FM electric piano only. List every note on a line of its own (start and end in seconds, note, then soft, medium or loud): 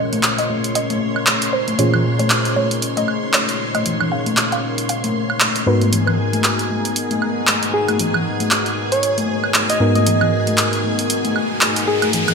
0.00 1.76 A#2 medium
0.00 1.76 C#4 medium
0.00 1.76 F4 medium
0.00 1.76 G#4 medium
0.00 1.76 C5 medium
1.79 5.64 A#2 medium
1.79 5.64 C#4 medium
1.79 5.64 F4 medium
1.79 5.64 G#4 medium
1.79 5.64 C5 medium
5.66 9.78 G#2 medium
5.66 9.78 B3 medium
5.66 9.78 D#4 medium
5.66 9.78 F#4 medium
5.66 9.78 A#4 medium
9.80 12.34 G#2 medium
9.80 12.34 B3 medium
9.80 12.34 D#4 medium
9.80 12.34 F#4 medium
9.80 12.34 A#4 medium